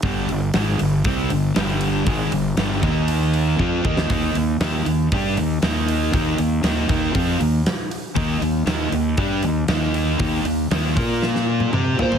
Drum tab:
HH |o-o-o-o-o-o-o-o-|o-o-o-o-o-o-----|o-o-o-o-o-o-o-o-|o-o-o-o-o-o-o-o-|
SD |----o-------o---|----o----------o|----o-------o---|----o-------o---|
T1 |----------------|----------------|----------------|----------------|
T2 |----------------|----------------|----------------|----------------|
FT |----------------|----------------|----------------|----------------|
BD |o-------o-------|o-----o-----o-o-|o-------o-------|o-----o-o-------|

HH |o-o-o-o-o-o-o-o-|o-o-o-o---------|
SD |----o-------o---|----o---oo------|
T1 |----------------|-----------o----|
T2 |----------------|------------o---|
FT |----------------|--------------oo|
BD |o-------o-------|o-----o---------|